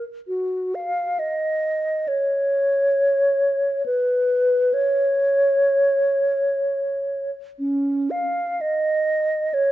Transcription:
0.28 F#4
0.75 F5
1.19 D#5
2.08 C#5
3.86 B4
4.74 C#5
7.59 C#4
8.10 F5
8.61 D#5
9.54 C#5

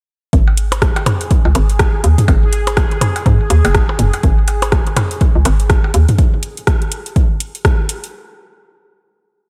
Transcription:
0.33 G#1 G#4, kick, closed hi-hat
0.48 percussion blips
0.57 closed hi-hat
0.72 closed hi-hat, percussion blips
0.82 kick, cross-stick, closed hi-hat
0.96 closed hi-hat, percussion blips
1.06 closed hi-hat, mid tom, percussion blips
1.21 closed hi-hat
1.31 kick, closed hi-hat
1.45 C#2, percussion blips
1.55 G#1, closed hi-hat, percussion blips
1.70 closed hi-hat
1.79 kick, cross-stick, closed hi-hat, percussion blips
2.04 D#2, closed hi-hat
2.18 closed hi-hat, mid tom
2.28 G#1, kick, closed hi-hat, percussion blips
2.53 closed hi-hat
2.67 closed hi-hat, percussion blips
2.77 kick, cross-stick, closed hi-hat, percussion blips
2.91 closed hi-hat
3.01 closed hi-hat, mid tom, percussion blips
3.16 closed hi-hat, percussion blips
3.26 G#2, kick, closed hi-hat
3.50 D#2, closed hi-hat, percussion blips
3.65 F#1, closed hi-hat, percussion blips
3.75 G#1, kick, cross-stick, closed hi-hat
3.89 percussion blips
3.99 F#1, closed hi-hat, mid tom
4.13 closed hi-hat, percussion blips
4.23 G#1, kick, closed hi-hat
4.48 closed hi-hat, percussion blips
4.62 closed hi-hat, percussion blips
4.72 kick, cross-stick, closed hi-hat
4.87 closed hi-hat
4.96 closed hi-hat, mid tom, percussion blips
5.11 closed hi-hat
5.21 kick, closed hi-hat
5.35 C#2
5.45 G#1, closed hi-hat, percussion blips
5.60 closed hi-hat
5.70 kick, cross-stick, closed hi-hat
5.84 percussion blips
5.94 D#2, closed hi-hat
6.08 closed hi-hat, mid tom
6.18 kick, closed hi-hat
6.43 closed hi-hat
6.57 closed hi-hat
6.67 kick, cross-stick, closed hi-hat
6.82 closed hi-hat
6.92 closed hi-hat
7.06 closed hi-hat
7.16 kick, closed hi-hat
7.40 closed hi-hat
7.55 closed hi-hat
7.65 kick, cross-stick, closed hi-hat
7.89 closed hi-hat
8.04 closed hi-hat

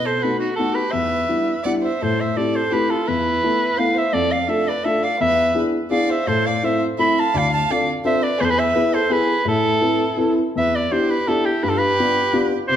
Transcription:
Already playing: B2
0.05 A4 C5
0.22 A3 B3 D#4 F#4 B4
0.39 D#4 F#4
0.55 F#4 A4
0.59 A3 B3 D#4 F#4
0.72 G4 B4
0.90 E2 B4 E5
1.29 G3 B3 D4 E4
1.63 G3 B3 D4 E4 D5 F#5
1.82 C5 E5
2.01 A2 A4 C5
2.20 C5 E5
2.36 A3 C4 E4 G4 A4 D5
2.53 A4 C5
2.71 A3 C4 E4 G4 B4
2.89 F4 A4
3.06 E2 E4 B4
3.43 A3 B3 E4 A4
3.76 A3 B3 E4 A4 B4 F5
3.94 C5 E5
4.13 F2 A4 D5
4.30 D5 F5
4.48 A3 D4 F4 A4 E5
4.68 B4 D5
4.84 A3 D4 F4 A4 E5
5.03 D5 F5
5.20 E2 B4 E5
5.54 B3 D4 E4 G#4
5.91 B3 D4 E4 G#4 D5 F5
6.10 C5 E5
6.27 A2 A4 C5
6.46 D5 F5
6.63 A3 C4 E4 A4 C5 E5
6.99 A3 C4 E4 A4 E5 B5
7.19 F5 A5
7.34 D2 D5 F5
7.52 F5 A5
7.70 C4 D4 F4 A4 D5 F5
8.05 C4 D4 F4 A4 C5 E5
8.22 B4 D5
8.38 E2 G#4 B4
8.44 A4 C5
8.49 G#4 B4
8.59 B4 E5
8.75 B3 E4 G#4 B4
8.94 A4 C5
9.10 B3 E4 G#4 B4
9.45 A2 E4 A4
9.81 C4 E4 A4 B4
10.17 C4 E4 A4 B4
10.55 E2 B4 E5
10.75 B4 D5
10.91 B3 D4 E4 G4 C5
11.10 G4 B4
11.28 B3 D4 E4 G4 A4
11.46 E4 G4
11.63 G2 G4 B4
11.69 F4 A4
11.78 G4 B4
12.00 B3 D4 F4 G4
12.33 B3 D4 F4 G4
12.68 C3 G4 C5

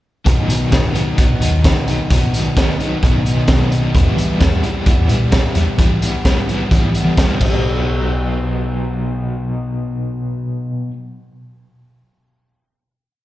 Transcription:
0.25 B1 B2 D#3 F#3 B3 D#4, kick, closed hi-hat
0.48 B2 F#3 B3 D#4, closed hi-hat
0.72 B1 D#3 F#3 B3 D#4, kick, snare, closed hi-hat
0.94 B2 D#3 F#3 B3 D#4, closed hi-hat
1.17 D#3 F#3 B3 D#4, kick, closed hi-hat
1.29 B1
1.41 D#2 F#3 B3 D#4, closed hi-hat
1.64 B2 D#3 F#3 B3 D#4, kick, snare, closed hi-hat
1.88 B1 F#3 B3 D#4, closed hi-hat
2.10 B2 D#3 F#3 B3 D#4, kick, closed hi-hat
2.33 F#3 B3 D#4, closed hi-hat
2.55 D#3 F#3 B3 D#4, kick, snare, closed hi-hat
2.79 B2 D#3 F#3 B3 D#4, closed hi-hat
3.02 B2 D#3 F#3 B3 D#4, kick, closed hi-hat
3.25 F#3 B3 D#4, closed hi-hat
3.36 B2
3.48 B2 D#3 F#3 B3 D#4, kick, snare, closed hi-hat
3.71 F#3 B3 D#4, closed hi-hat
3.94 E2 E3 G3 B3 E4, kick, closed hi-hat
4.16 E3 B3 E4, closed hi-hat
4.20 G3
4.40 E2 E3 G3 B3 E4, kick, snare, closed hi-hat
4.63 E3 G3 B3 E4, closed hi-hat
4.86 E3 G3 B3 E4, kick, closed hi-hat
4.98 E2
5.08 A#2 G3 B3 E4, closed hi-hat
5.32 E3 G3 B3 E4, kick, snare, closed hi-hat
5.54 E2 G3 B3 E4, closed hi-hat
5.78 E3 G3 B3 E4, kick, closed hi-hat
6.02 G3 B3 E4, closed hi-hat
6.25 E3 G3 B3 E4, kick, snare, closed hi-hat
6.48 E3 G3 B3 E4, closed hi-hat
6.71 E3 G3 B3 E4, kick, closed hi-hat
6.94 G3 B3 E4, closed hi-hat
7.05 E3
7.17 E3 G3 B3 E4, kick, snare, closed hi-hat
7.39 B1 B2 F#3 B3, kick, crash
7.43 D#4

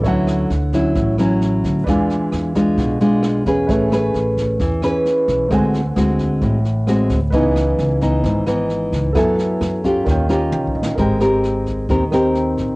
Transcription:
0.01 D2 D3 A4 C#5 E5, kick, snare
0.06 F#3 C#4 E4 F#5
0.27 cross-stick, snare
0.50 D2, snare
0.73 F#3 C#4 E4, kick, snare
0.95 A1 A2, kick, snare
1.18 F#3 C#4 E4, cross-stick, snare
1.41 snare
1.64 D2, kick, snare
1.84 E2 B4 D5, kick, cross-stick, snare
1.88 E3 G#3 D4 F4 F5 G#5
2.10 snare
2.32 E2, cross-stick, snare
2.55 G#3 D4 F4, kick, snare
2.78 B1 B2, kick, snare
3.00 G#3 D4 F4, snare
3.23 F5, cross-stick, snare
3.46 E2 C#4 G#4 B4, kick, snare
3.66 A1 A3 B4 C#5 E5, kick, snare
3.73 G#5
3.92 C#4 G#4 B4, cross-stick, snare
4.14 A1, snare
4.37 kick, snare
4.60 E2 E3, kick, snare
4.82 C#4 G#4 B4, cross-stick, snare
5.05 snare
5.28 B1, kick, snare
5.48 D2 D3 G#3 A3 C4 F#4 C5, kick, cross-stick, snare
5.52 F#5 G#5
5.74 snare
5.96 D2 G#3 C4 F#4, cross-stick, snare
6.19 kick, snare
6.42 A1 A2, kick, snare
6.65 snare
6.87 G#3 C4 F#4, cross-stick, snare
7.10 D2, kick, snare
7.30 C#2 C#3 E3 B3 D#4 B4 D#5, kick, snare
7.34 E4 G#5
7.56 cross-stick, snare
7.78 C#2, snare
8.01 E3 B3 D#4, kick, snare
8.24 G#1 G#2, kick, snare
8.46 E3 B3 D#4, cross-stick, snare
8.69 snare
8.92 C#2, kick, snare
9.13 F#2 F#3 B3 E4 A4 B4, kick, cross-stick, snare
9.17 E5 G#5
9.38 snare
9.61 F#2, cross-stick, snare
9.84 C#4 F4 G4, kick, snare
10.04 D#2 D#3 A#4 C#5 F5, kick, snare
10.11 G5
10.29 C#4 F4 G4 A#5, snare
10.52 C2 G5, high tom
10.67 kick
10.75 A#1 D#5
10.83 snare
10.95 G#1 G#3 C4 G4 A#4 C5 D#5, kick, snare
11.01 G5
11.20 C4 G4 A#4, cross-stick, snare
11.44 snare
11.66 kick, snare
11.89 D#2 D#3 C4 G4 A#4, kick, snare
12.10 D#2 C4 G4 A#4 C5 D#5 G5, cross-stick, snare
12.35 snare
12.57 A#1, kick, snare

